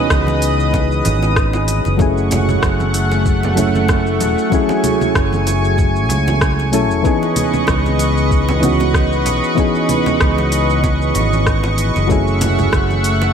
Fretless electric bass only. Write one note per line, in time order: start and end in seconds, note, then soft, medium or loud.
0.10 1.00 C#2 medium
1.05 1.80 G#1 medium
1.86 2.58 F#1 medium
2.63 4.21 F#1 loud
4.21 4.34 E1 medium
5.15 6.10 F#1 medium
6.10 6.74 C#2 medium
6.74 6.91 B1 medium
6.91 7.02 E1 medium
7.68 9.26 C#2 medium
9.26 9.40 B1 medium
10.21 11.10 C#2 medium
11.15 11.90 G#1 medium
11.96 12.68 F#1 medium
12.73 13.33 F#1 medium